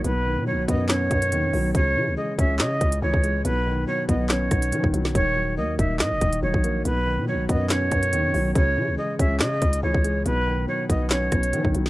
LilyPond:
<<
  \new Staff \with { instrumentName = "Flute" } { \time 4/4 \key ces \major \tempo 4 = 141 b'4 cis''8 dis''8 cis''2 | des''4 ees''8 fes''8 ees''4 des''4 | b'4 cis''8 dis''8 cis''2 | des''4 ees''8 fes''8 ees''4 des''4 |
b'4 cis''8 dis''8 cis''2 | des''4 ees''8 fes''8 ees''4 des''4 | b'4 cis''8 dis''8 cis''2 | }
  \new Staff \with { instrumentName = "Grand piano" } { \clef bass \time 4/4 \key ces \major b,8 dis8 fis8 b8 cis'8 b,8 dis8 fis8 | des8 fes8 aes8 des'8 des''8 des8 fes8 aes8 | b,8 dis8 fis8 b8 cis'8 b,8 dis8 fis8 | ees8 ges8 bes8 ees'8 ees''8 ees8 ges8 bes8 |
b,8 dis8 fis8 b8 cis'8 b,8 dis8 fis8 | des8 fes8 aes8 des'8 des''8 des8 fes8 aes8 | b,8 dis8 fis8 b8 cis'8 b,8 dis8 fis8 | }
  \new Staff \with { instrumentName = "808-style bass" } { \clef bass \time 4/4 \key ces \major b,,8. b,16. b,,16. fis,4 fis,8 dis,16 fis,16 b,,8 | des,8 des16 des,16 r8 des,8 des8 des,8 des,16 des,8. | b,,4 r8 b,,4 b,,8 fis16 b,,16 b,,8 | ees,,4 ees,8 ees,,8 bes,16 ees,,16 ees,,8 ees,,16 bes,,8. |
b,,8. b,16. b,,16. fis,4 fis,8 dis,16 fis,16 b,,8 | des,8 des16 des,16 r8 des,8 des8 des,8 des,16 des,8. | b,,4 r8 b,,4 b,,8 fis16 b,,16 b,,8 | }
  \new DrumStaff \with { instrumentName = "Drums" } \drummode { \time 4/4 hh4 r8 <hh bd>8 <hc hh sn>8 <hh bd>16 hh16 hh8 hho8 | <hh bd>4 r8 <hh bd>8 <hc hh sn>8 <hh bd>16 hh16 r16 bd16 hh8 | hh4 r8 <hh bd>8 <hc hh sn>8 <hh bd ss>16 hh16 hh16 bd16 hh16 sn16 | <hh bd>4 r8 <hh bd>8 <hc hh sn>8 <hh bd>16 hh16 r16 bd16 hh8 |
hh4 r8 <hh bd>8 <hc hh sn>8 <hh bd>16 hh16 hh8 hho8 | <hh bd>4 r8 <hh bd>8 <hc hh sn>8 <hh bd>16 hh16 r16 bd16 hh8 | hh4 r8 <hh bd>8 <hc hh sn>8 <hh bd ss>16 hh16 hh16 bd16 hh16 sn16 | }
>>